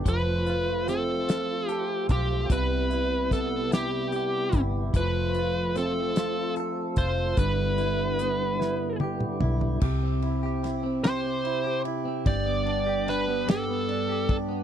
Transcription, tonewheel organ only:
\new Staff \with { instrumentName = "Tonewheel organ" } { \time 6/8 \key c \major \tempo 4. = 49 <f a f'>2. | <g b e'>2. | <f a f'>2. | <d g b e'>2. |
r2. | r2. | }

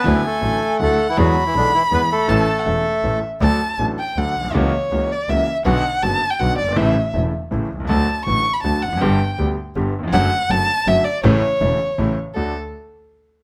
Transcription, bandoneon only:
\new Staff \with { instrumentName = "Bandoneon" } { \time 3/4 \key a \major \tempo 4 = 161 <b b'>8 <a a'>4. <a a'>8. <e e'>16 | <fis fis'>8. <e e'>16 <d d'>8 <e e'>8 <b b'>8 <a a'>8~ | <a a'>2~ <a a'>8 r8 | \key d \major r2. |
r2. | r2. | r2. | r2. |
r2. | r2. | r2. | r2. | }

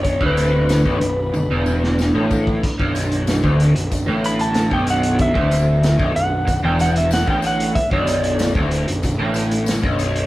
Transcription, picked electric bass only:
\new Staff \with { instrumentName = "Picked electric bass" } { \clef bass \time 4/4 \key b \minor \tempo 4 = 94 b,,,16 d,,4 b,,,16 b,,,8 b,,,16 e,,4 a,,8. | r16 b,,,4 d,,8 b,,,16 b,,,16 a,,4 b,,,8.~ | b,,,16 d,,4 b,,,16 b,,,8 b,,,16 e,,4 a,,8. | r16 b,,,4 d,,8 b,,,16 b,,,16 a,,4 b,,,8. | }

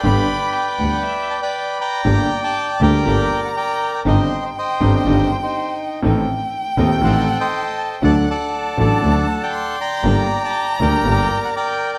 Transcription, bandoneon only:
\new Staff \with { instrumentName = "Bandoneon" } { \time 4/4 \key g \major \tempo 4 = 120 << { g''2~ g''8 a''16 g''8. bes''8~ | \key g \minor bes''8. a''8. g''4~ g''16 fis''16 g''8. g''16 | ees''8. c''16 g''8. ees''8. c''16 c''8. r8 | r4. ees''16 g''16 fis''8. g''8. a''8 |
a''8 fis''4 d''4 a''16 g''8. bes''8~ | bes''8. a''8. g''4~ g''16 fis''16 g''8. g''16 | } \\ { <b' d''>2~ <b' d''>8. <b' d''>8. <d'' g''>8~ | <d'' g''>8. d''8. <bes' d''>4. <bes' d''>4 | c''4 <c'' ees''>8. c''4 ees'4~ ees'16 | r2 <a' c''>8. <c'' ees''>4~ <c'' ees''>16 |
<d'' fis''>8 <a' d''>4 <a' fis''>4~ <a' fis''>16 d''8. <d'' g''>8~ | <d'' g''>8. d''8. <bes' d''>4. <bes' d''>4 | } >> }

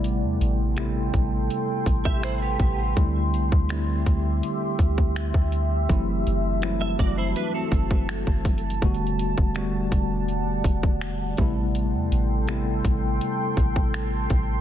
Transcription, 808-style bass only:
\new Staff \with { instrumentName = "808-style bass" } { \clef bass \time 4/4 \key a \dorian \tempo 4 = 82 a,,16 e,16 a,,4 a,,8 r8 a,,4 a,,8 | d,8 c,16 d,8. d,8 r8 d,8. d,8. | fis,,8 fis,,4 fis,,8 r8 fis,,8. fis,,8. | e,,8. e,,8. e,,4 e,,4 a,,8~ |
a,,16 e,16 a,,4 a,,8 r8 a,,4 a,,8 | }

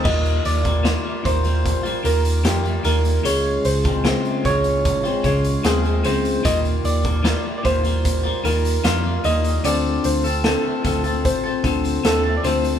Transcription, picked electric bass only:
\new Staff \with { instrumentName = "Picked electric bass" } { \clef bass \time 4/4 \key ees \lydian \tempo 4 = 75 ees,8 ees,8. r16 ees,8. r16 ees,8 f,8 ees,8 | des,8 des,8. r16 des,8. r16 des,8 ees,8 des,8 | ees,8 ees,8. r16 ees,4 ees,8 f,8 ees,8 | d,8 d,8. r16 d,8. r16 d,8 ees,8 d,8 | }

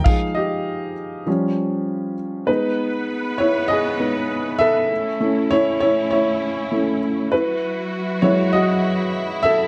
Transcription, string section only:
\new Staff \with { instrumentName = "String section" } { \time 4/4 \key f \dorian \tempo 4 = 99 r1 | \key gis \phrygian <b b'>1 | <a cis' e'>1 | <fis e' fis'>1 | }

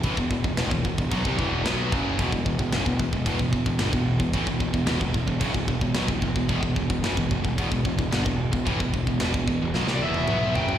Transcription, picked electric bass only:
\new Staff \with { instrumentName = "Picked electric bass" } { \clef bass \time 4/4 \key e \minor \tempo 4 = 111 a,,16 e,,16 e,,16 e,,16 e,,16 e,,16 e,,16 e,,16 b,,16 c,16 e,,8 b,,8 fis,,8 | e,,16 e,,16 e,,16 e,,16 fis,,16 e,,16 e,,16 e,,16 e,,16 e,,16 e,,16 e,,16 g,,16 e,,8 e,,16 | a,,16 e,,16 e,,16 e,,16 e,,16 e,,16 e,,16 e,,16 fis,,16 e,,16 e,,16 e,,16 b,,16 e,,16 e,,16 e,,16 | e,,16 e,,16 e,,16 e,,16 fis,,16 e,,16 e,,16 e,,16 e,,16 e,,16 e,,16 e,,16 g,,16 e,,8 e,,16 |
a,,16 e,,16 e,,16 e,,16 e,,16 e,,16 e,,16 e,,16 b,,16 c,16 e,,8 b,,8 fis,,8 | }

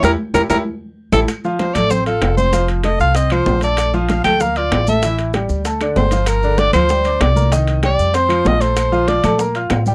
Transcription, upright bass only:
\new Staff \with { instrumentName = "Upright bass" } { \clef bass \time 4/4 \key a \phrygian \tempo 4 = 192 e,8 r8 e,8 e,8 r4. a,,8 | \key f \major r4. a,,4. f,,4~ | f,,4. c,4. bes,,4~ | bes,,4. d,4. a,,4~ |
a,,4. d,4. g,,4~ | g,,4. d,4. c,4~ | c,4. f,4. bes,,4~ | bes,,4. bes,4. a,4 | }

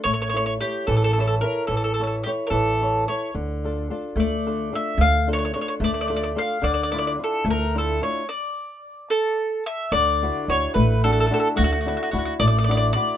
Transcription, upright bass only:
\new Staff \with { instrumentName = "Upright bass" } { \clef bass \time 6/8 \key d \minor \tempo 4. = 73 a,,4. a,,4. | a,,4. a,,4. | d,4. d,4. | d,4. d,4. |
d,4. d,4. | r2. | \key d \major d,4 d,8 a,,4. | d,4 d,8 a,,4. | }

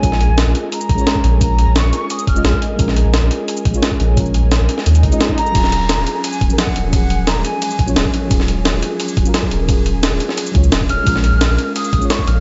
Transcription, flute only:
\new Staff \with { instrumentName = "Flute" } { \time 4/4 \key ees \minor \tempo 4 = 174 aes''4. r8 bes''2 | bes''4 des'''4 ees'''8 f'''4 r8 | r1 | r2. r8 bes''8~ |
bes''2 aes''4 ges''4 | ges''4 bes''8 aes''2 r8 | r1 | r2. r8 f'''8~ |
f'''2 ees'''4 des'''8 f'''8 | }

